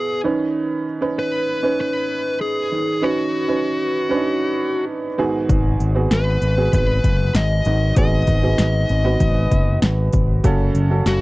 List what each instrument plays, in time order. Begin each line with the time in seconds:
Already playing: upright piano B2 B3 E4 G#4 B4, lead electric guitar G#4
0.24 upright piano D#3 C#4 D#4 B4
1.01 upright piano C#4 D#4 B4
1.19 lead electric guitar B4
1.63 upright piano C#4 D#4 B4
1.81 lead electric guitar B4
2.41 lead electric guitar G#4
2.72 upright piano D#3
3.02 upright piano C#4 D#4 B4, lead electric guitar F#4
3.48 upright piano C#4 D#4 B4
4.09 upright piano C#4 D4 B4
4.16 upright piano D#4
5.18 upright piano G#2 D#3 B3 F#4 G#4
5.49 picked electric bass G#1, kick, closed hi-hat
5.80 picked electric bass G#1, closed hi-hat
5.95 upright piano B3 F#4 G#4
6.11 picked electric bass G#1, lead electric guitar B4, snare, closed hi-hat
6.42 picked electric bass G#1, closed hi-hat
6.57 upright piano B3 F#4 G#4
6.73 picked electric bass G#1, lead electric guitar B4, kick, closed hi-hat
7.04 picked electric bass F#1, kick, closed hi-hat
7.35 picked electric bass G#1, lead electric guitar D#5, snare, closed hi-hat
7.65 picked electric bass G#1, upright piano G#2 D#3, closed hi-hat
7.96 picked electric bass G#1, upright piano B3 F#4 G#4, lead electric guitar D#5, kick, closed hi-hat
8.27 picked electric bass G#1, kick, closed hi-hat
8.43 upright piano B3 F#4 G#4
8.58 picked electric bass G#1, snare, closed hi-hat
8.89 picked electric bass G#1, closed hi-hat
9.04 upright piano B3 F#4 B4
9.20 picked electric bass G#1, kick, closed hi-hat
9.51 picked electric bass F#1, kick, closed hi-hat
9.82 picked electric bass G#1, snare, closed hi-hat
10.13 picked electric bass G#1, kick, closed hi-hat
10.44 picked electric bass F#1, upright piano C#3 C#4 F#4 A4, kick, closed hi-hat
10.75 picked electric bass F#1, closed hi-hat
10.90 upright piano C#4 F#4 A4
11.06 picked electric bass F#1, lead electric guitar F#4, snare, closed hi-hat